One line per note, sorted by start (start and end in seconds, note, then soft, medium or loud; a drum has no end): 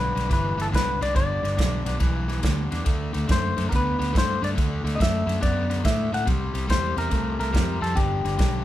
0.00 0.15 B1 loud
0.00 0.13 G2 medium
0.00 0.13 D3 medium
0.00 0.29 B4 medium
0.15 0.29 B1 medium
0.15 0.28 G2 medium
0.15 0.29 D3 medium
0.15 snare soft
0.15 ride medium
0.29 0.57 G1 loud
0.29 0.55 G2 medium
0.29 0.55 E3 loud
0.29 kick medium
0.29 snare soft
0.29 ride medium
0.33 0.61 B4 medium
0.57 0.71 G1 medium
0.57 0.70 G2 medium
0.57 0.71 E3 loud
0.57 snare soft
0.57 ride medium
0.62 0.67 A4 medium
0.72 1.00 C2 medium
0.72 0.98 G2 medium
0.72 0.98 D3 medium
0.72 1.02 B4 loud
0.72 kick medium
0.72 ride medium
0.76 snare loud
1.01 1.14 C2 loud
1.01 1.13 G2 medium
1.01 1.13 D3 medium
1.01 1.15 D5 loud
1.01 snare soft
1.01 ride medium
1.14 1.42 G1 loud
1.14 1.40 G2 medium
1.14 1.41 D3 medium
1.14 1.97 D5 loud
1.14 kick medium
1.14 snare soft
1.14 ride medium
1.43 1.57 G1 medium
1.43 1.55 G2 medium
1.43 1.56 D3 medium
1.43 snare soft
1.43 ride medium
1.56 1.85 B1 medium
1.56 1.83 G2 medium
1.56 1.83 D3 medium
1.56 kick medium
1.56 snare loud
1.56 ride medium
1.85 2.00 B1 medium
1.85 1.98 G2 medium
1.85 1.99 D3 medium
1.85 snare soft
1.85 ride medium
1.99 2.41 B1 medium
1.99 2.25 G2 medium
1.99 2.26 E3 loud
1.99 kick medium
1.99 snare soft
1.99 ride medium
2.28 2.40 G2 medium
2.28 2.41 E3 medium
2.28 snare soft
2.28 ride medium
2.41 2.70 D2 medium
2.41 2.68 G2 medium
2.41 2.68 D3 medium
2.41 kick medium
2.41 snare loud
2.41 ride medium
2.71 2.85 E2 medium
2.71 2.84 G2 medium
2.71 2.84 D3 medium
2.71 snare soft
2.71 ride medium
2.85 3.13 D2 loud
2.85 3.11 D3 medium
2.85 3.11 A3 medium
2.85 kick medium
2.85 snare soft
2.85 ride medium
3.13 3.28 D2 medium
3.13 3.26 D3 medium
3.13 3.27 A3 medium
3.13 snare soft
3.13 ride medium
3.27 3.55 F#2 medium
3.27 3.53 D3 medium
3.27 3.54 A3 medium
3.27 kick medium
3.27 snare loud
3.27 ride medium
3.32 3.69 C5 loud
3.57 3.70 F#2 medium
3.57 3.69 D3 medium
3.57 3.70 A3 medium
3.57 snare soft
3.57 ride medium
3.69 3.98 D2 loud
3.69 3.96 D3 medium
3.69 3.96 B3 loud
3.69 3.72 A#4 medium
3.69 kick medium
3.69 ride medium
3.74 4.17 B4 loud
3.74 snare soft
3.98 4.12 D2 medium
3.98 4.11 D3 medium
3.98 4.12 B3 loud
3.98 ride medium
4.03 snare soft
4.12 4.41 G2 medium
4.12 4.38 D3 loud
4.12 4.39 A3 loud
4.12 kick medium
4.12 ride medium
4.18 4.42 C5 loud
4.18 snare loud
4.42 4.55 G2 loud
4.42 4.54 D3 medium
4.42 4.54 A3 medium
4.42 4.49 D5 medium
4.42 snare soft
4.42 ride medium
4.55 4.83 D2 loud
4.55 4.81 D3 medium
4.55 4.81 A3 loud
4.55 kick medium
4.55 ride medium
4.60 snare soft
4.84 4.97 D2 medium
4.84 4.97 D3 medium
4.84 4.97 A3 medium
4.84 ride medium
4.88 snare soft
4.95 5.24 D3 medium
4.95 5.24 A3 medium
4.95 4.99 D#5 medium
5.00 5.26 F#2 medium
5.00 5.42 E5 loud
5.00 kick medium
5.00 snare loud
5.00 ride medium
5.26 5.40 F#2 loud
5.26 5.39 D3 medium
5.26 5.40 A3 medium
5.26 ride medium
5.31 snare soft
5.40 5.82 F#2 loud
5.40 5.66 D3 medium
5.40 5.67 B3 loud
5.40 5.85 D5 medium
5.40 kick medium
5.40 snare soft
5.40 ride medium
5.70 5.82 D3 medium
5.70 5.82 B3 medium
5.70 snare soft
5.70 ride medium
5.84 6.11 A2 loud
5.84 6.09 D3 medium
5.84 6.09 A3 loud
5.84 6.14 E5 medium
5.84 kick medium
5.84 snare loud
5.84 ride medium
6.12 6.29 A2 medium
6.12 6.25 D3 medium
6.12 6.25 A3 medium
6.12 6.26 F#5 loud
6.12 snare soft
6.12 ride medium
6.25 6.53 C2 loud
6.25 6.51 C3 medium
6.25 6.52 G3 medium
6.25 kick medium
6.25 snare soft
6.25 ride medium
6.54 6.67 C2 medium
6.54 6.66 C3 medium
6.54 6.67 G3 medium
6.54 snare soft
6.54 ride medium
6.67 6.96 E2 medium
6.67 6.94 C3 medium
6.67 6.94 G3 loud
6.67 6.96 C5 loud
6.67 kick medium
6.67 snare loud
6.67 ride medium
6.96 7.10 E2 medium
6.96 7.09 C3 medium
6.96 7.10 G3 medium
6.96 7.39 A#4 loud
6.96 snare soft
6.96 ride medium
7.10 7.38 C2 loud
7.10 7.36 C3 medium
7.10 7.37 A3 medium
7.10 kick medium
7.10 snare soft
7.10 ride medium
7.39 7.53 C2 medium
7.39 7.51 C3 medium
7.39 7.52 A3 loud
7.39 7.82 A#4 loud
7.39 snare soft
7.39 ride medium
7.52 7.81 F2 medium
7.52 7.79 C3 medium
7.52 7.79 G3 medium
7.52 kick medium
7.52 snare loud
7.52 ride medium
7.81 7.95 F2 medium
7.81 7.94 C3 medium
7.81 7.94 G3 medium
7.81 7.97 A4 loud
7.81 ride medium
7.85 snare soft
7.95 8.23 G1 loud
7.95 8.21 G2 medium
7.95 8.22 D3 loud
7.95 8.64 G4 medium
7.95 kick medium
7.95 snare soft
7.95 ride medium
8.24 8.38 G1 loud
8.24 8.37 G2 medium
8.24 8.37 D3 medium
8.24 snare soft
8.24 ride medium
8.38 8.64 B1 loud
8.38 8.64 G2 medium
8.38 8.64 D3 loud
8.38 kick medium
8.38 snare loud
8.38 ride medium